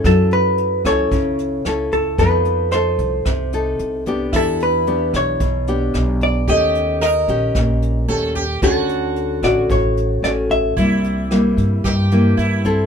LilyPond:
<<
  \new Staff \with { instrumentName = "Hollow-body jazz guitar" } { \time 4/4 \key d \major \tempo 4 = 112 a'8 b'4 cis''2 a'8 | b'4 c''2~ c''8 r8 | a'8 b'4 cis''2 d''8 | ees''4 ees''2~ ees''8 r8 |
a'4. d''8 cis''4 d''8 e''8~ | e''2. r4 | }
  \new Staff \with { instrumentName = "Sitar" } { \time 4/4 \key d \major r1 | r1 | e'1 | g'4 bes'2 a'8 g'8 |
fis'1 | e'2 g'4 e'4 | }
  \new Staff \with { instrumentName = "Nylon-string guitar" } { \time 4/4 \key d \major << { <cis' e' a'>4. <cis' e' a'>4. <cis' e' a'>4 | <b ees' a'>4 <ees' a'>4. <ees' a'>4 <b d' g'>8~ | <b d' g'>4 <b d' g'>4 r8 <b d' g'>4. | <a des' g'>4 r8 <des' g'>4. <a des' g'>8 r8 |
<a cis' fis'>4. <a cis' fis'>4. <a cis' fis'>4 | <g bes e'>4 <g bes e'>4. <g bes e'>4 <c' e' a'>8 | } \\ { fis2 cis2 | f2 c2 | e2 b,2 | ees2 bes,2 |
d2 a,2 | c2 g,2 | } >> }
  \new Staff \with { instrumentName = "Upright bass" } { \clef bass \time 4/4 \key d \major fis,4. cis,8 cis,4 cis,4 | f,4. c,8 c,4 c,4 | e,4. b,,8 b,,4 b,,4 | ees,4. bes,,8 bes,,4 ees,4 |
d,4. a,,8 a,,4 a,,4 | c,4. g,8 g,4 g,4 | }
  \new DrumStaff \with { instrumentName = "Drums" } \drummode { \time 4/4 <hh bd ss>8 hh8 hh8 <hh bd ss>8 <hh bd>8 hh8 <hh ss>8 <hh bd>8 | <hh bd>8 hh8 <hh ss>8 <hh bd>8 <hh bd ss>8 hh8 hh8 <hh bd>8 | <hh bd ss>8 hh8 hh8 <hh bd ss>8 <hh bd>8 hh8 <hh ss>8 <hh bd>8 | <hh bd>8 hh8 <hh ss>8 <hh bd>8 <hh bd ss>8 hh8 hh8 <hh bd>8 |
<hh bd ss>8 hh8 hh8 <hh bd ss>8 <hh bd>8 hh8 <hh ss>8 <hh bd>8 | <hh bd>8 hh8 <hh ss>8 <hh bd>8 <hh bd ss>8 hh8 hh8 <hh bd>8 | }
>>